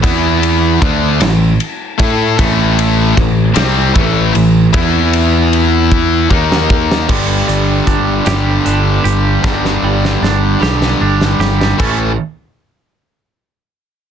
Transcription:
<<
  \new Staff \with { instrumentName = "Clean electric guitar" } { \time 6/8 \key g \lydian \tempo 4. = 51 r2. | r2. | r2. | g,8 g8 d'8 g'8 d'8 g'8 |
g,8 g8 d'8 g'8 d'8 g'8 | <a, e a cis' a'>8 r2 r8 | }
  \new Staff \with { instrumentName = "Distorted electric guitar" } { \clef bass \time 6/8 \key g \lydian <e b e'>4 <d a d'>8 <a, e>8 r8 <a e' a'>8 | <a, e a>4 <a, e>8 <c g c'>8 <a, e a>8 <a, e>8 | <e b e'>2 <dis ais dis'>4 | <g, d g b d' g'>2. |
<g, d g b d' g'>2. | <a, e a cis' e'>8 r2 r8 | }
  \new Staff \with { instrumentName = "Distorted electric guitar" } { \clef bass \time 6/8 \key g \lydian <e b e'>4 <d a d'>8 <a, e>8 r8 <a e' a'>8 | <a, e a>4 <a, e>8 <c g c'>8 <a, e a>8 <a, e>8 | <e b e'>2 <dis ais dis'>4 | <g, d g>4. <g, d g>4. |
<g, d g>4. <g, d g>4. | <a, e a>8 r2 r8 | }
  \new Staff \with { instrumentName = "Picked electric bass" } { \clef bass \time 6/8 \key g \lydian e,4 d,8 a,,8 r8 a,8 | a,,4 a,,8 c,8 a,,8 a,,8 | e,2 dis,4 | g,,8 g,,8 g,,8 g,,8 g,,8 g,,8 |
g,,8 g,,8 g,,8 b,,8 g,,8 g,,8 | a,,8 r2 r8 | }
  \new DrumStaff \with { instrumentName = "Drums" } \drummode { \time 6/8 <bd cymr>8 cymr8 <bd cymr>8 <cymr sn>8 cymr8 <bd cymr>8 | <bd cymr>8 cymr8 <bd cymr>8 <cymr sn>8 <bd cymr>8 cymr8 | <bd cymr>8 cymr8 cymr8 bd8 bd16 sn16 bd16 sn16 | <cymc bd>8 hh8 <hh bd>8 <hh sn>8 hh8 hh8 |
<bd sn>16 sn8 sn16 sn8 sn16 sn8 sn16 sn16 sn16 | <cymc bd>4. r4. | }
>>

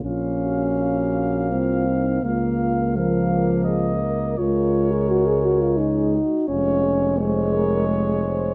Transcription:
<<
  \new Staff \with { instrumentName = "Cornet" } { \time 3/4 \key bes \minor \tempo 4 = 85 f''2. | f''4 f''4 ees''4 | des''2~ des''8 r8 | des''4 des''2 | }
  \new Staff \with { instrumentName = "French horn section" } { \time 3/4 \key bes \minor f'8 ges'4. f'8 ees'8 | f'4 bes'4 aes'8 bes'8 | bes'2 aes'8 ges'8 | f'8 aes'8 c''8 bes'8 aes'8 c''8 | }
  \new Staff \with { instrumentName = "Euphonium" } { \time 3/4 \key bes \minor des'2 c'4 | bes4 f4. r8 | f'8. aes'16 ges'16 aes'16 ges'16 f'16 ees'4 | des'4 aes4. r8 | }
  \new Staff \with { instrumentName = "Trombone" } { \time 3/4 \key bes \minor bes2. | bes4 bes2 | aes2~ aes8 r8 | aes4 aes2 | }
  \new Staff \with { instrumentName = "Tuba" } { \clef bass \time 3/4 \key bes \minor bes,,2 c,4 | des,2. | des,2~ des,8 r8 | f,,2. | }
>>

